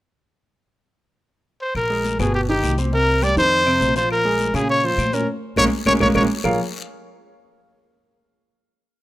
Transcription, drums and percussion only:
1.75 high conga soft
1.75 long guiro medium
1.75 claves medium
1.90 high conga soft
2.05 high conga medium
2.05 short guiro medium
2.19 high conga medium
2.19 short guiro medium
2.19 claves medium
2.34 high conga soft
2.34 long guiro medium
2.49 high conga soft
2.63 high conga medium
2.63 short guiro medium
2.63 claves medium
2.78 high conga medium
2.78 short guiro medium
2.93 long guiro medium
3.08 high conga soft
3.22 high conga medium
3.22 short guiro medium
3.22 claves medium
3.37 high conga soft
3.37 short guiro medium
3.52 high conga soft
3.52 long guiro medium
3.67 high conga soft
3.67 claves medium
3.81 high conga medium
3.81 short guiro medium
3.96 short guiro medium
4.10 high conga soft
4.10 long guiro medium
4.10 claves medium
4.25 high conga soft
4.39 high conga medium
4.39 short guiro medium
4.54 high conga medium
4.54 short guiro medium
4.54 claves medium
4.69 high conga soft
4.69 long guiro medium
4.84 high conga soft
4.98 high conga medium
4.98 short guiro medium
4.98 claves medium
5.12 high conga medium
5.12 short guiro medium
5.56 high conga medium
5.56 long guiro medium
5.56 claves medium
5.86 high conga medium
5.86 long guiro medium
5.86 claves medium
6.00 high conga medium
6.00 long guiro medium
6.00 claves medium
6.15 high conga loud
6.15 long guiro medium
6.15 claves medium
6.44 low conga medium
6.44 long guiro medium
6.44 claves medium

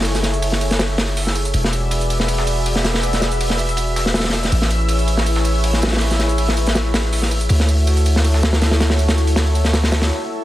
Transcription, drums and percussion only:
0.01 snare medium
0.01 open hi-hat medium
0.05 open hi-hat medium
0.05 tambourine medium
0.15 snare soft
0.15 closed hi-hat soft
0.23 snare soft
0.23 open hi-hat medium
0.23 tambourine medium
0.34 closed hi-hat soft
0.42 open hi-hat medium
0.42 tambourine medium
0.52 snare soft
0.61 open hi-hat medium
0.61 tambourine medium
0.71 snare soft
0.71 closed hi-hat soft
0.79 snare medium
0.79 open hi-hat medium
0.79 tambourine medium
0.98 snare medium
0.98 snare soft
0.98 open hi-hat medium
0.98 tambourine medium
1.17 open hi-hat medium
1.17 open hi-hat soft
1.27 snare soft
1.35 open hi-hat medium
1.35 tambourine medium
1.45 closed hi-hat soft
1.54 open hi-hat medium
1.54 tambourine medium
1.64 snare soft
1.73 open hi-hat medium
1.73 tambourine medium
1.91 open hi-hat medium
1.91 tambourine medium
2.01 closed hi-hat soft
2.10 open hi-hat medium
2.10 tambourine medium
2.20 snare soft
2.28 open hi-hat medium
2.28 tambourine medium
2.38 snare soft
2.47 open hi-hat medium
2.47 tambourine medium
2.66 open hi-hat medium
2.66 tambourine medium
2.75 snare soft
2.84 snare medium
2.84 open hi-hat medium
2.84 tambourine medium
2.94 snare soft
3.03 open hi-hat medium
3.03 tambourine medium
3.13 snare soft
3.13 closed hi-hat soft
3.22 snare soft
3.22 open hi-hat medium
3.22 tambourine medium
3.32 closed hi-hat soft
3.41 open hi-hat medium
3.41 tambourine medium
3.50 snare soft
3.58 open hi-hat medium
3.58 tambourine medium
3.69 closed hi-hat soft
3.77 open hi-hat medium
3.77 tambourine medium
3.96 snare soft
3.96 open hi-hat medium
3.96 tambourine medium
4.06 snare soft
4.14 snare medium
4.14 open hi-hat medium
4.20 snare medium
4.20 open hi-hat medium
4.24 snare medium
4.24 open hi-hat medium
4.29 snare medium
4.29 open hi-hat medium
4.33 snare soft
4.33 open hi-hat medium
4.33 tambourine medium
4.43 snare soft
4.43 closed hi-hat soft
4.52 open hi-hat medium
4.52 tambourine medium
4.62 snare soft
4.70 open hi-hat medium
4.70 tambourine medium
4.88 open hi-hat medium
4.88 tambourine medium
4.99 closed hi-hat soft
5.08 open hi-hat medium
5.08 tambourine medium
5.17 snare soft
5.26 open hi-hat medium
5.26 tambourine medium
5.36 snare soft
5.45 open hi-hat medium
5.45 tambourine medium
5.64 open hi-hat medium
5.64 tambourine medium
5.73 snare soft
5.82 snare medium
5.82 open hi-hat medium
5.82 tambourine medium
5.87 snare medium
5.87 open hi-hat medium
5.92 snare medium
5.92 open hi-hat medium
5.97 snare medium
5.97 open hi-hat medium
6.01 open hi-hat medium
6.01 tambourine medium
6.11 snare soft
6.11 closed hi-hat soft
6.19 snare soft
6.19 open hi-hat medium
6.19 tambourine medium
6.29 closed hi-hat soft
6.38 open hi-hat medium
6.38 tambourine medium
6.48 snare soft
6.57 open hi-hat medium
6.57 tambourine medium
6.67 snare soft
6.67 closed hi-hat soft
6.75 snare medium
6.75 open hi-hat medium
6.75 tambourine medium
6.94 snare medium
6.94 snare soft
6.94 open hi-hat medium
6.94 tambourine medium
7.13 open hi-hat medium
7.22 snare soft
7.31 open hi-hat medium
7.31 tambourine medium
7.41 closed hi-hat soft
7.49 open hi-hat medium
7.49 tambourine medium
7.60 snare soft
7.69 open hi-hat medium
7.69 tambourine medium
7.87 open hi-hat medium
7.87 tambourine medium
7.97 closed hi-hat soft
8.06 open hi-hat medium
8.06 tambourine medium
8.16 snare soft
8.24 open hi-hat medium
8.24 tambourine medium
8.34 snare soft
8.43 snare medium
8.43 open hi-hat medium
8.43 tambourine medium
8.53 snare loud
8.53 open hi-hat medium
8.62 snare medium
8.62 open hi-hat medium
8.62 tambourine medium
8.71 snare medium
8.71 open hi-hat medium
8.80 snare loud
8.80 open hi-hat medium
8.80 tambourine medium
8.90 snare medium
8.90 open hi-hat medium
8.99 open hi-hat medium
8.99 tambourine medium
9.09 snare medium
9.09 closed hi-hat soft
9.09 open hi-hat medium
9.18 tambourine medium
9.27 closed hi-hat soft
9.27 open hi-hat medium
9.36 snare medium
9.36 open hi-hat medium
9.36 tambourine medium
9.55 open hi-hat medium
9.55 tambourine medium
9.64 snare soft
9.64 closed hi-hat soft
9.73 snare medium
9.73 open hi-hat medium
9.73 tambourine medium
9.83 snare medium
9.83 open hi-hat medium
9.92 snare loud
9.92 snare soft
9.92 open hi-hat medium
9.92 tambourine medium
10.02 snare loud
10.02 open hi-hat medium

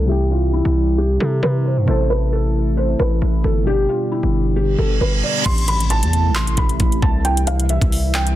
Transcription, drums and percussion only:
5.46 kick loud
5.46 closed hi-hat medium
5.46 crash loud
5.58 closed hi-hat medium
5.68 closed hi-hat medium
5.80 closed hi-hat medium
5.90 closed hi-hat medium
6.03 closed hi-hat medium
6.13 closed hi-hat medium
6.35 clap loud
6.35 closed hi-hat medium
6.47 closed hi-hat medium
6.57 kick loud
6.57 closed hi-hat medium
6.69 closed hi-hat medium
6.80 kick loud
6.80 closed hi-hat medium
6.92 closed hi-hat medium
7.02 kick loud
7.25 closed hi-hat medium
7.37 closed hi-hat medium
7.47 closed hi-hat medium
7.60 closed hi-hat medium
7.69 closed hi-hat medium
7.82 kick loud
7.82 closed hi-hat medium
7.92 open hi-hat medium
8.14 clap loud
8.14 closed hi-hat medium
8.27 closed hi-hat medium

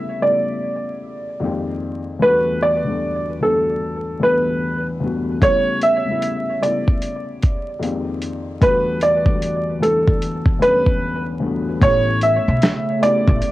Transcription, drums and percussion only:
5.42 kick loud
5.42 closed hi-hat medium
5.82 closed hi-hat medium
6.22 closed hi-hat medium
6.63 closed hi-hat medium
6.88 kick medium
7.02 closed hi-hat medium
7.42 kick medium
7.42 closed hi-hat medium
7.83 closed hi-hat medium
8.22 closed hi-hat medium
8.61 kick loud
8.61 closed hi-hat medium
9.01 closed hi-hat medium
9.26 kick medium
9.42 closed hi-hat medium
9.83 closed hi-hat medium
10.08 kick medium
10.22 closed hi-hat medium
10.46 kick loud
10.62 closed hi-hat medium
10.86 kick medium
11.82 kick loud
11.82 closed hi-hat medium
12.21 closed hi-hat medium
12.62 snare loud
12.62 closed hi-hat medium
13.03 closed hi-hat medium
13.28 kick loud
13.42 closed hi-hat medium

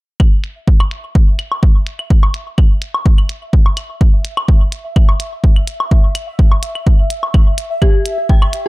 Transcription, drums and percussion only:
0.20 kick loud
0.20 claves medium
0.44 closed hi-hat medium
0.68 kick loud
0.80 claves medium
0.80 low woodblock medium
0.91 closed hi-hat medium
1.15 kick loud
1.39 closed hi-hat medium
1.39 claves medium
1.52 low woodblock medium
1.63 kick loud
1.87 closed hi-hat medium
1.99 claves medium
2.10 kick loud
2.23 low woodblock medium
2.34 closed hi-hat loud
2.58 kick loud
2.58 claves medium
2.82 closed hi-hat medium
2.94 low woodblock medium
3.06 kick loud
3.18 claves medium
3.29 closed hi-hat medium
3.53 kick loud
3.66 low woodblock medium
3.77 closed hi-hat medium
3.77 claves medium
4.01 kick loud
4.25 closed hi-hat medium
4.37 claves medium
4.37 low woodblock medium
4.48 kick loud
4.72 closed hi-hat medium
4.96 kick loud
4.96 claves medium
5.09 low woodblock medium
5.20 closed hi-hat medium
5.44 kick loud
5.56 claves medium
5.67 closed hi-hat medium
5.80 low woodblock medium
5.91 kick loud
6.15 closed hi-hat medium
6.15 claves medium
6.39 kick loud
6.52 low woodblock medium
6.63 closed hi-hat medium
6.75 claves medium
6.87 kick loud
7.10 closed hi-hat loud
7.23 low woodblock medium
7.34 kick loud
7.34 claves medium
7.58 closed hi-hat medium
7.82 kick loud
7.82 claves medium
8.06 closed hi-hat medium
8.29 kick loud
8.42 claves medium
8.42 low woodblock medium
8.53 closed hi-hat medium

